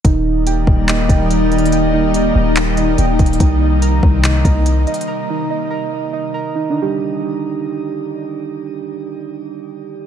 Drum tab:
HH |x-----x-----x--x--x--xxx|x-----x-----x--x--x--xxx|x-----x-----x--x--x--xxx|------------------------|
CP |------------x-----------|------------x-----------|------------x-----------|------------------------|
BD |o--------o-----o--------|---------------------o--|o--------o-----o--------|------------------------|

HH |------------------------|------------------------|
CP |------------------------|------------------------|
BD |------------------------|------------------------|